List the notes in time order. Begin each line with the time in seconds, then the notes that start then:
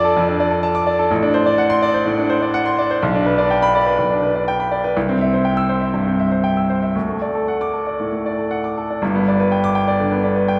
Already playing: F2 D4 A4 D5 A5 D6
0.05 A4
0.17 F2
0.28 D4
0.40 D5
0.51 A4
0.63 A5
0.75 D6
0.87 D5
0.99 A4
1.11 A1
1.22 D4
1.34 C5
1.46 D5
1.58 F#5
1.70 C6
1.82 D5
1.94 C5
2.06 A2
2.18 D4
2.30 C5
2.42 D5
2.54 F#5
2.66 C6
2.79 D5
2.91 C5
3.03 B1
3.15 D4
3.26 B4
3.38 D5
3.50 G5
3.62 B5
3.75 D5
3.86 B4
3.98 B1
4.11 D4
4.23 B4
4.36 D5
4.48 G5
4.60 B5
4.71 D5
4.84 B4
4.97 C2
5.09 C4
5.21 E5
5.33 C5
5.45 G5
5.57 E6
5.69 C5
5.81 E5
5.94 G2
6.07 C4
6.20 E5
6.32 C5
6.44 G5
6.57 E6
6.70 C5
6.83 E5
6.95 D2
7.08 A3
7.22 D5
7.35 A4
7.48 F#5
7.61 D6
7.73 A4
7.87 D5
8.00 A2
8.12 A3
8.26 D5
8.38 A4
8.51 F#5
8.64 D6
8.78 A4
8.90 D5
9.02 G1 G2
9.15 B3
9.28 D5
9.40 B4
9.52 G5
9.64 D6
9.75 G5
9.88 D5
10.00 D3
10.12 B3
10.24 D5
10.36 B4
10.48 G5